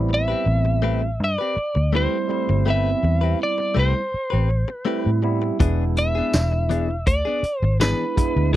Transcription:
0.00 0.33 A1 medium
0.00 1.06 G3 medium
0.00 1.06 B3 medium
0.00 1.06 C4 medium
0.00 1.06 E4 medium
0.09 muted clean electric guitar stroke soft
0.14 1.24 E5 loud
0.28 0.45 C4 soft
0.28 0.46 G4 soft
0.28 0.46 B4 soft
0.46 1.20 A1 medium
0.46 muted clean electric guitar stroke soft
0.65 muted clean electric guitar stroke soft
0.82 1.02 A3 medium
0.82 1.02 C4 medium
0.82 1.02 G4 medium
0.82 1.01 B4 medium
1.02 muted clean electric guitar stroke soft
1.20 1.36 G2 loud
1.24 1.92 D5 medium
1.38 1.56 C4 soft
1.38 1.56 G4 soft
1.38 1.56 B4 soft
1.56 muted clean electric guitar stroke soft
1.56 muted fingered electric bass stroke soft
1.75 2.06 D2 medium
1.75 muted clean electric guitar stroke soft
1.93 2.27 G3 medium
1.93 2.16 A3 medium
1.93 2.27 A3 medium
1.93 2.16 C4 medium
1.93 2.27 C4 medium
1.93 2.27 E4 medium
1.93 2.17 G4 medium
1.93 2.17 B4 medium
1.93 2.64 C5 medium
2.28 2.62 G3 medium
2.28 2.62 A3 medium
2.28 2.63 C4 medium
2.28 2.63 E4 medium
2.28 muted clean electric guitar stroke soft
2.49 2.94 G1 medium
2.49 muted clean electric guitar stroke soft
2.65 3.99 G3 medium
2.65 2.89 A3 medium
2.65 3.99 B3 medium
2.65 4.00 C4 medium
2.65 2.90 C4 medium
2.65 4.00 E4 medium
2.65 2.90 G4 medium
2.65 2.90 B4 medium
2.70 3.38 E5 medium
3.03 3.33 E2 medium
3.03 muted clean electric guitar stroke soft
3.21 3.39 C4 soft
3.21 3.39 G4 soft
3.21 3.40 B4 medium
3.39 3.76 D5 medium
3.39 muted clean electric guitar stroke soft
3.58 muted clean electric guitar stroke soft
3.75 3.92 C2 medium
3.75 3.95 A3 medium
3.75 3.95 C4 medium
3.75 3.94 G4 medium
3.75 3.94 B4 medium
3.79 4.71 C5 medium
3.95 muted clean electric guitar stroke soft
4.14 muted fingered electric bass stroke soft
4.30 4.63 A1 medium
4.30 4.49 C4 soft
4.30 4.49 G4 soft
4.30 4.49 B4 soft
4.49 muted clean electric guitar stroke soft
4.68 5.21 B4 medium
4.68 muted clean electric guitar stroke soft
4.85 5.20 G3 medium
4.85 5.09 A3 medium
4.85 5.20 A3 medium
4.85 5.09 C4 medium
4.85 5.20 C4 medium
4.85 5.20 E4 medium
4.85 5.10 G4 medium
4.85 5.10 B4 medium
5.06 5.50 A2 medium
5.22 5.56 G3 medium
5.22 5.57 B3 medium
5.22 5.57 C4 medium
5.22 5.57 E4 medium
5.22 muted clean electric guitar stroke soft
5.42 muted clean electric guitar stroke soft
5.60 6.20 E1 medium
5.60 5.83 E3 medium
5.60 6.93 G#3 medium
5.60 6.93 B3 medium
5.60 5.83 B3 medium
5.60 6.94 D4 medium
5.60 5.83 D4 medium
5.60 6.94 E4 medium
5.60 5.84 G#4 medium
5.60 kick loud
5.60 closed hi-hat medium
5.96 7.07 E5 loud
5.96 muted clean electric guitar stroke soft
5.96 closed hi-hat medium
6.15 6.33 B3 soft
6.15 6.34 D4 soft
6.15 6.33 G#4 medium
6.33 7.07 E1 medium
6.33 muted clean electric guitar stroke soft
6.33 snare loud
6.33 closed hi-hat medium
6.33 tambourine loud
6.52 muted clean electric guitar stroke soft
6.69 6.89 E3 medium
6.69 6.90 B3 medium
6.69 6.89 D4 medium
6.69 6.88 G#4 medium
6.69 closed hi-hat medium
6.89 muted clean electric guitar stroke soft
7.07 7.23 D2 loud
7.07 7.58 D5 medium
7.07 kick medium
7.07 closed hi-hat medium
7.25 7.43 B3 soft
7.25 7.44 D4 soft
7.25 7.43 G#4 soft
7.43 muted fingered electric bass stroke soft
7.43 muted clean electric guitar stroke soft
7.43 closed hi-hat medium
7.58 7.93 G#1 medium
7.58 7.77 C5 medium
7.63 muted clean electric guitar stroke soft
7.79 8.03 E3 medium
7.79 8.13 G#3 medium
7.79 8.14 B3 medium
7.79 8.04 B3 medium
7.79 8.14 D4 soft
7.79 8.04 D4 medium
7.79 8.14 E4 medium
7.79 8.04 G#4 medium
7.79 8.50 B4 medium
7.79 snare medium
7.79 closed hi-hat medium
7.79 tambourine loud
8.16 8.50 G#3 medium
8.16 8.50 B3 medium
8.16 8.50 D4 medium
8.16 8.51 E4 medium
8.16 muted clean electric guitar stroke soft
8.16 kick medium
8.16 closed hi-hat medium
8.36 8.56 D2 medium
8.36 muted clean electric guitar stroke soft
8.52 8.56 E3 medium
8.52 8.56 G#3 medium
8.52 8.56 B3 medium
8.52 8.56 D4 medium

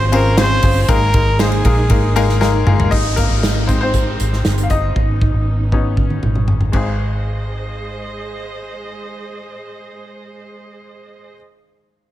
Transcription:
0.00 0.60 G#1 loud
0.00 0.89 G#2 medium
0.00 0.88 F3 medium
0.00 0.88 G#3 medium
0.00 0.12 C4 loud
0.00 0.88 C4 medium
0.00 0.12 C#4 loud
0.00 0.88 C#4 medium
0.00 0.12 F4 loud
0.00 0.12 G#4 medium
0.00 0.12 C5 loud
0.00 0.90 D#5 medium
0.06 0.16 C5 medium
0.12 0.33 C4 loud
0.12 0.33 C#4 medium
0.12 0.33 F4 medium
0.12 0.33 G#4 loud
0.12 0.39 A#4 medium
0.12 0.33 C5 loud
0.12 ride medium
0.37 0.58 C4 loud
0.37 0.58 C#4 medium
0.37 0.58 F4 medium
0.37 0.58 G#4 medium
0.37 0.58 C5 loud
0.37 0.82 C5 loud
0.37 snare loud
0.37 ride medium
0.63 0.87 G1 loud
0.63 0.84 C4 medium
0.63 0.84 C#4 medium
0.63 0.84 F4 medium
0.63 0.84 G#4 medium
0.63 0.84 C5 medium
0.63 kick medium
0.63 open hi-hat medium
0.63 ride medium
0.82 0.92 C5 medium
0.88 1.61 G#1 loud
0.88 1.61 G#2 medium
0.88 1.61 D#3 medium
0.88 1.09 G#3 loud
0.88 2.90 G#3 medium
0.88 1.09 A#3 loud
0.88 2.91 A#3 medium
0.88 1.09 D#4 loud
0.88 2.91 D#4 medium
0.88 1.09 G#4 loud
0.88 1.09 A#4 loud
0.88 1.41 A#4 loud
0.88 kick loud
0.88 hi-hat pedal medium
0.88 ride medium
1.13 1.35 G#3 medium
1.13 1.34 A#3 medium
1.13 1.35 D#4 medium
1.13 1.35 G#4 medium
1.13 1.35 A#4 medium
1.13 kick loud
1.13 ride medium
1.39 1.60 G#3 medium
1.39 1.60 A#3 medium
1.39 1.60 D#4 medium
1.39 1.60 G#4 medium
1.39 2.38 G#4 medium
1.39 1.60 C5 medium
1.39 snare loud
1.39 ride medium
1.52 ride soft
1.65 1.89 A#1 loud
1.65 1.86 G#3 medium
1.65 1.86 A#3 medium
1.65 1.86 D#4 medium
1.65 1.86 G#4 medium
1.65 1.86 A#4 medium
1.65 kick medium
1.65 ride medium
1.90 2.63 G#1 loud
1.90 2.11 G#3 medium
1.90 2.11 A#3 medium
1.90 2.11 D#4 medium
1.90 2.11 G#4 medium
1.90 2.11 A#4 medium
1.90 kick loud
1.90 ride medium
2.16 2.37 G#3 loud
2.16 2.36 A#3 loud
2.16 2.37 D#4 loud
2.16 2.36 G#4 loud
2.16 2.37 A#4 loud
2.16 ride medium
2.29 snare soft
2.41 2.62 G#3 loud
2.41 2.62 A#3 loud
2.41 2.62 D#4 loud
2.41 2.62 G#4 loud
2.41 2.62 A#4 loud
2.41 snare medium
2.67 2.90 G1 loud
2.67 2.87 G#3 medium
2.67 2.87 A#3 medium
2.67 2.87 D#4 medium
2.67 2.88 G#4 medium
2.67 2.87 A#4 medium
2.67 mid tom medium
2.80 floor tom loud
2.91 3.28 G#1 medium
2.91 4.94 G#3 medium
2.91 4.94 C4 medium
2.91 6.70 D#4 medium
2.91 3.17 D#4 medium
2.91 3.18 D#5 loud
2.91 kick medium
2.91 crash medium
2.91 downlifter medium
3.16 3.66 A#3 medium
3.16 3.70 A#4 medium
3.16 kick medium
3.16 closed hi-hat medium
3.30 4.16 G#1 medium
3.43 snare loud
3.43 closed hi-hat medium
3.67 4.02 G#3 medium
3.67 3.81 C4 medium
3.67 4.03 D#4 medium
3.67 3.79 C5 medium
3.67 kick medium
3.67 closed hi-hat medium
3.81 4.60 C4 medium
3.81 4.59 C5 medium
3.94 kick medium
3.94 closed hi-hat medium
4.20 4.44 G#1 medium
4.20 closed hi-hat medium
4.33 snare soft
4.45 4.69 G1 medium
4.45 snare medium
4.45 closed hi-hat medium
4.58 closed hi-hat soft
4.63 4.70 F5 soft
4.70 4.94 G1 medium
4.70 5.72 D#4 medium
4.70 6.45 D#5 medium
4.70 kick medium
4.70 closed hi-hat medium
4.95 5.31 G#1 medium
4.95 6.72 B3 medium
4.95 6.72 C#4 medium
4.95 kick medium
5.21 kick medium
5.34 6.19 G#1 medium
5.72 6.06 B3 soft
5.72 6.07 C#4 soft
5.72 6.07 D#4 medium
5.72 kick medium
5.97 kick medium
5.97 high tom soft
6.10 high tom soft
6.23 6.71 G#1 medium
6.23 mid tom medium
6.35 mid tom soft
6.48 mid tom medium
6.61 mid tom medium
6.72 11.34 G#1 medium
6.72 11.33 G#3 medium
6.72 11.34 C4 medium
6.72 11.35 D#4 medium
6.72 11.33 G#4 medium
6.72 11.36 G#4 medium
6.72 11.33 C5 medium
6.72 11.33 D#5 medium
6.72 kick medium
6.72 crash medium

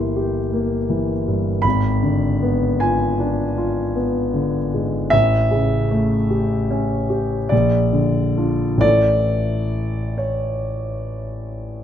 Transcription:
0.00 1.60 G1 medium
0.00 0.90 E3 soft
0.00 0.53 A#3 soft
0.00 0.39 E4 soft
0.00 0.16 G4 soft
0.00 1.63 C6 loud
0.16 0.76 G4 soft
0.53 1.12 A#3 soft
0.90 1.49 E3 soft
1.28 1.65 G2 soft
1.62 5.08 G#1 medium
1.62 2.79 B5 medium
2.03 2.65 D3 soft
2.42 3.04 B3 soft
2.80 3.42 F4 soft
2.80 3.96 G#5 medium
3.20 3.81 D4 soft
3.58 4.20 F4 soft
3.96 4.58 B3 soft
4.34 4.96 D3 soft
4.74 5.13 G#2 soft
5.10 7.48 A1 medium
5.10 7.51 E5 loud
5.51 6.14 C#3 medium
5.91 6.54 A3 medium
6.30 6.94 G4 soft
6.71 7.36 C#4 medium
7.10 7.51 G4 soft
7.49 8.78 A#1 medium
7.49 8.79 D5 medium
7.93 8.64 D3 soft
8.37 8.78 D4 soft
8.37 8.79 F4 soft
8.77 11.84 A1 medium
8.77 11.84 E3 soft
8.77 11.84 A3 soft
8.77 10.18 D5 loud
8.82 11.84 A4 soft
10.18 11.84 C#5 medium

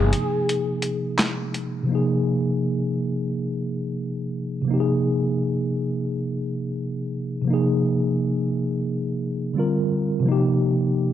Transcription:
0.00 0.11 G1 medium
0.00 1.81 C3 medium
0.00 1.82 F3 medium
0.00 1.84 A#3 medium
0.00 1.85 D#4 medium
0.00 1.53 G#4 loud
0.00 1.87 G#4 medium
0.13 closed hi-hat medium
0.49 closed hi-hat medium
0.82 closed hi-hat medium
1.19 snare loud
1.19 clap medium
1.19 closed hi-hat medium
1.54 closed hi-hat medium
1.83 4.60 C3 medium
1.83 4.62 F3 medium
1.89 4.63 A#3 medium
1.89 4.65 D#4 medium
1.95 4.66 G#4 medium
4.62 7.39 C3 medium
4.62 7.41 F3 medium
4.68 7.42 A#3 medium
4.68 7.44 D#4 medium
4.74 4.78 G4 medium
4.80 7.48 G#4 medium
7.42 9.49 C3 medium
7.42 9.50 F3 medium
7.47 9.52 A#3 medium
7.47 9.53 D#4 medium
7.54 9.55 G#4 medium
9.54 10.24 D3 medium
9.54 10.25 G3 medium
9.54 10.26 C4 medium
9.58 10.26 F4 medium
9.58 10.27 A#4 medium
10.20 11.13 C3 medium
10.20 11.13 F3 medium
10.26 11.13 A#3 medium
10.26 11.13 D#4 medium
10.32 11.13 G4 medium

